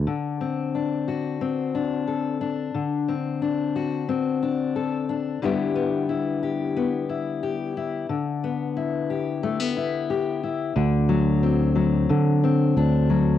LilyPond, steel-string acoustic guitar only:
\new Staff \with { instrumentName = "Steel-string acoustic guitar" } { \time 4/4 \key d \mixolydian \tempo 4 = 90 << { r8 c'8 d'8 fis'8 c'8 d'8 a'8 d'8 | r8 c'8 d'8 fis'8 c'8 d'8 a'8 d'8 | <g b e' g'>8 b8 e'8 g'8 b8 e'8 g'8 e'8 | r8 b8 e'8 g'8 a16 b16 e'8 g'8 e'8 |
r4 c'4. c'8 d'4 | } \\ { d1 | d1 | d1 | d1 |
d8 fis4 fis8 d4. fis8 | } >> }